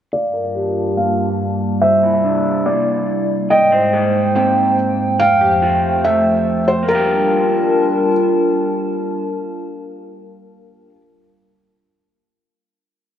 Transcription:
0.13 1.80 G2 medium
0.13 3.47 G3 medium
0.13 3.47 A#3 medium
0.13 1.80 F4 medium
0.13 0.93 D5 medium
0.13 1.40 F5 medium
0.13 1.80 A5 medium
0.34 1.60 A#4 medium
0.55 1.82 G4 medium
0.97 1.82 A#3 medium
0.97 1.37 F5 medium
1.82 3.49 C3 medium
1.82 3.49 E4 medium
1.82 3.08 C5 medium
1.82 3.49 D5 medium
1.82 2.62 E5 loud
2.03 3.30 E4 medium
2.24 3.51 D4 medium
2.66 3.51 A#3 medium
2.66 3.06 D5 medium
3.50 5.18 G#2 medium
3.50 5.18 G#3 medium
3.50 5.18 A#3 medium
3.50 5.18 C5 medium
3.50 4.31 D#5 loud
3.50 4.77 G5 loud
3.50 6.85 G5 medium
3.72 4.99 C5 medium
3.93 5.20 G#4 medium
4.35 5.20 C4 medium
4.35 4.75 G5 medium
5.19 6.87 F2 medium
5.19 6.87 F3 medium
5.19 6.87 A3 medium
5.19 6.87 C5 medium
5.19 6.00 F5 loud
5.19 6.46 G5 medium
5.41 6.68 G4 medium
5.62 6.82 F4 medium
6.04 6.89 A3 medium
6.04 6.64 E5 medium
6.68 6.88 C5 medium
6.83 10.89 A#3 medium
6.89 10.95 G3 medium
6.89 10.95 D4 medium
6.89 10.95 F4 medium
6.89 8.11 A#4 medium
6.89 10.95 A#4 medium
6.89 10.95 A5 medium
6.95 11.01 G4 medium

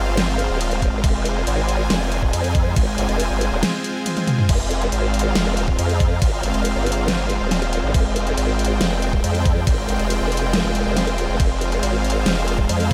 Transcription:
0.00 0.48 G1 loud
0.00 4.45 G#3 medium
0.00 4.45 C4 medium
0.00 4.45 F4 medium
0.00 4.45 C5 medium
0.00 1.02 F5 loud
0.17 snare loud
0.17 closed hi-hat medium
0.17 crash medium
0.39 closed hi-hat medium
0.50 0.91 D#1 loud
0.61 closed hi-hat medium
0.61 crash soft
0.71 closed hi-hat soft
0.82 kick medium
0.82 closed hi-hat medium
0.93 1.02 G#1 loud
1.04 1.45 F1 loud
1.04 4.48 G#5 medium
1.04 kick loud
1.04 closed hi-hat medium
1.04 crash medium
1.25 closed hi-hat medium
1.47 1.88 G#1 loud
1.47 closed hi-hat medium
1.47 crash soft
1.69 closed hi-hat medium
1.90 2.32 F1 loud
1.90 snare loud
1.90 closed hi-hat medium
1.90 crash medium
2.12 closed hi-hat medium
2.23 kick medium
2.33 2.75 F2 loud
2.33 closed hi-hat medium
2.33 crash soft
2.44 closed hi-hat soft
2.55 kick loud
2.55 closed hi-hat medium
2.76 2.96 G#1 loud
2.76 kick loud
2.76 closed hi-hat medium
2.76 crash medium
2.98 3.07 G1 loud
2.98 closed hi-hat medium
3.09 3.29 F1 loud
3.09 closed hi-hat soft
3.20 closed hi-hat medium
3.20 crash soft
3.30 3.50 G1 loud
3.41 closed hi-hat medium
3.52 3.63 D#1 loud
3.63 snare loud
3.63 closed hi-hat medium
3.63 crash medium
3.84 closed hi-hat medium
4.06 closed hi-hat medium
4.06 high tom medium
4.06 crash soft
4.17 closed hi-hat soft
4.17 high tom medium
4.28 closed hi-hat medium
4.28 mid tom medium
4.38 mid tom medium
4.49 4.91 F1 medium
4.49 12.94 G#3 medium
4.49 12.94 C4 medium
4.49 12.94 F4 medium
4.49 12.94 C5 medium
4.49 7.93 F5 medium
4.49 kick loud
4.49 closed hi-hat medium
4.49 crash loud
4.49 crash medium
4.71 closed hi-hat medium
4.81 closed hi-hat soft
4.92 5.34 G#1 loud
4.92 closed hi-hat medium
4.92 crash soft
5.14 closed hi-hat medium
5.19 closed hi-hat medium
5.35 5.77 F1 loud
5.35 snare loud
5.35 closed hi-hat medium
5.35 crash medium
5.57 closed hi-hat medium
5.68 kick medium
5.79 6.20 F2 loud
5.79 closed hi-hat medium
5.79 crash medium
5.89 closed hi-hat soft
6.00 kick loud
6.00 closed hi-hat medium
6.22 6.42 G#1 loud
6.22 kick loud
6.22 closed hi-hat medium
6.22 crash medium
6.43 6.52 G1 loud
6.43 closed hi-hat medium
6.54 6.74 F1 loud
6.54 closed hi-hat soft
6.65 closed hi-hat medium
6.65 crash soft
6.76 7.39 G1 loud
6.87 closed hi-hat medium
6.92 closed hi-hat medium
7.08 snare loud
7.08 closed hi-hat medium
7.08 crash medium
7.30 closed hi-hat medium
7.41 7.82 D#1 loud
7.51 snare medium
7.51 closed hi-hat medium
7.51 crash soft
7.62 closed hi-hat soft
7.73 closed hi-hat medium
7.84 7.93 G#1 loud
7.94 8.36 F1 medium
7.94 11.38 G5 medium
7.94 kick loud
7.94 closed hi-hat medium
7.94 crash medium
8.16 closed hi-hat medium
8.27 closed hi-hat soft
8.38 8.79 G#1 loud
8.38 closed hi-hat medium
8.38 crash soft
8.59 closed hi-hat medium
8.65 closed hi-hat medium
8.81 9.22 F1 loud
8.81 snare loud
8.81 closed hi-hat medium
8.81 crash medium
9.02 closed hi-hat medium
9.13 kick medium
9.24 9.65 F2 loud
9.24 closed hi-hat medium
9.24 crash soft
9.35 closed hi-hat soft
9.46 kick loud
9.46 closed hi-hat medium
9.67 9.87 G#1 loud
9.67 kick loud
9.67 closed hi-hat medium
9.67 crash medium
9.89 9.98 G1 loud
9.89 closed hi-hat medium
9.99 10.19 F1 loud
9.99 closed hi-hat soft
10.10 closed hi-hat medium
10.10 crash soft
10.21 10.62 F1 loud
10.32 closed hi-hat soft
10.37 closed hi-hat medium
10.53 snare loud
10.53 closed hi-hat medium
10.53 crash medium
10.64 10.84 F1 loud
10.75 closed hi-hat medium
10.86 11.27 F1 loud
10.97 snare medium
10.97 closed hi-hat medium
10.97 crash soft
11.07 closed hi-hat soft
11.18 closed hi-hat medium
11.29 11.38 F1 loud
11.40 11.81 F1 loud
11.40 12.94 F5 medium
11.40 kick loud
11.40 closed hi-hat medium
11.40 crash medium
11.61 closed hi-hat medium
11.72 closed hi-hat soft
11.83 12.24 G#1 loud
11.83 closed hi-hat medium
11.83 crash soft
12.04 closed hi-hat soft
12.10 closed hi-hat medium
12.26 12.68 F1 loud
12.26 snare loud
12.26 closed hi-hat medium
12.26 crash medium
12.48 closed hi-hat medium
12.58 kick medium
12.69 12.94 F2 loud
12.69 closed hi-hat medium
12.69 crash soft
12.80 closed hi-hat soft

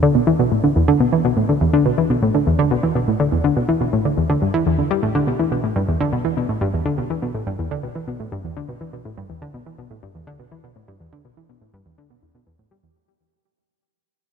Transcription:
0.03 0.12 D3 loud
0.15 0.19 B2 medium
0.27 0.31 E3 medium
0.39 0.49 B2 medium
0.52 0.58 A2 medium
0.64 0.68 D3 medium
0.76 0.82 E2 medium
0.88 0.98 D3 loud
1.00 1.04 B2 medium
1.12 1.16 E3 medium
1.25 1.34 B2 medium
1.37 1.43 A2 medium
1.49 1.53 D3 medium
1.61 1.68 E2 medium
1.73 1.83 D3 loud
1.86 1.90 B2 medium
1.98 2.02 E3 medium
2.10 2.20 B2 medium
2.22 2.29 A2 medium
2.35 2.38 D3 medium
2.47 2.53 E2 medium
2.59 2.68 D3 loud
2.71 2.75 B2 medium
2.83 2.87 E3 medium
2.95 3.05 B2 medium
3.08 3.14 A2 medium
3.20 3.24 D3 medium
3.32 3.38 E2 medium
3.44 3.54 D3 medium
3.57 3.60 B2 medium
3.69 3.72 E3 medium
3.81 3.90 B2 medium
3.93 3.99 A2 medium
4.05 4.09 D3 medium
4.17 4.24 E2 medium
4.30 4.39 D3 medium
4.42 4.48 G2 medium
4.54 4.60 E3 medium
4.66 4.73 E2 medium
4.79 4.82 D3 medium
4.91 5.00 G3 medium
5.03 5.09 A2 medium
5.15 5.24 D3 medium
5.27 5.31 B2 medium
5.39 5.43 E3 medium
5.52 5.61 B2 medium
5.64 5.70 A2 medium
5.76 5.82 G2 medium
5.88 5.95 E2 medium
6.01 6.10 D3 medium
6.13 6.16 B2 medium
6.25 6.29 E3 medium
6.37 6.46 B2 medium
6.49 6.56 A2 medium
6.61 6.68 G2 medium
6.74 6.80 E2 medium
6.86 6.95 D3 medium
6.98 7.02 B2 medium
7.10 7.14 E3 medium
7.22 7.32 B2 medium
7.34 7.41 A2 medium
7.47 7.53 G2 medium
7.59 7.65 E2 medium
7.71 7.81 D3 medium
7.83 7.87 B2 medium
7.95 7.99 E3 medium
8.08 8.17 B2 medium
8.20 8.26 A2 medium
8.32 8.38 G2 medium
8.44 8.51 E2 medium
8.57 8.66 D3 medium
8.69 8.72 B2 medium
8.81 8.85 E3 medium
8.93 9.03 B2 medium
9.05 9.12 A2 medium
9.18 9.24 G2 medium
9.30 9.36 E2 medium
9.42 9.51 D3 medium
9.54 9.58 B2 medium
9.66 9.70 E3 medium
9.78 9.88 B2 medium
9.91 9.97 A2 medium
10.03 10.09 G2 medium
10.15 10.21 E2 medium
10.27 10.37 D3 loud
10.39 10.43 B2 medium
10.52 10.55 E3 medium
10.64 10.73 B2 medium
10.76 10.82 A2 medium
10.88 10.95 G2 medium
11.00 11.07 E2 medium
11.13 11.22 D3 medium
11.25 11.29 B2 medium
11.37 11.41 E3 medium
11.49 11.59 B2 medium
11.61 11.68 A2 medium
11.74 11.80 G2 loud
11.86 11.92 E2 medium
11.98 12.08 D3 medium
12.10 12.14 B2 medium
12.22 12.26 E2 medium
12.35 12.41 B2 medium
12.47 12.53 E2 medium
12.59 12.65 A2 medium
12.71 12.81 G3 medium
12.83 12.87 E2 medium

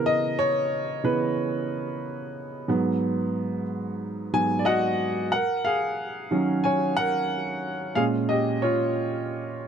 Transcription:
0.00 1.02 C#3 medium
0.00 1.03 E3 medium
0.00 1.03 B3 medium
0.00 2.69 A#4 medium
0.06 0.39 D#5 loud
0.39 1.06 C#5 loud
1.04 1.33 C#3 soft
1.04 1.33 E3 soft
1.04 1.33 B3 soft
1.04 2.64 B4 medium
2.68 3.63 G#2 medium
2.68 3.63 F#3 soft
2.68 3.63 B3 medium
4.33 4.62 G#2 medium
4.33 4.63 F#3 soft
4.33 4.63 B3 soft
4.33 4.67 G#5 loud
4.59 4.65 D5 medium
4.65 5.28 F#4 medium
4.65 5.27 D#5 medium
4.65 5.28 F#5 medium
5.32 5.63 A#4 medium
5.32 5.65 F#5 medium
5.65 6.60 G#4 medium
5.65 6.59 F5 medium
6.31 6.76 D#3 medium
6.31 6.77 F#3 soft
6.31 6.77 C#4 medium
6.64 6.95 C#5 medium
6.64 6.97 G#5 medium
6.97 7.92 A#4 medium
6.97 7.98 F#5 loud
7.95 9.68 A#2 medium
7.95 9.68 G#3 soft
7.95 9.68 C#4 medium
7.95 8.04 G#4 medium
7.95 8.03 F5 medium
8.29 8.37 G4 medium
8.29 8.36 D#5 medium
8.62 9.68 F4 medium
8.62 9.68 C#5 medium

